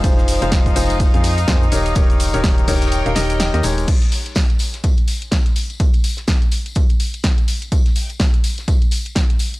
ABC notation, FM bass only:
X:1
M:4/4
L:1/16
Q:"Swing 16ths" 1/4=125
K:Ebmix
V:1 name="FM bass" clef=bass
F,,,3 F,,,3 F,,,3 F,,3 F,,2 E,,,2 | E,,,3 E,,,3 E,,,3 E,,, E,,,3 E,, E,,,2 | z16 | z16 |
z16 |]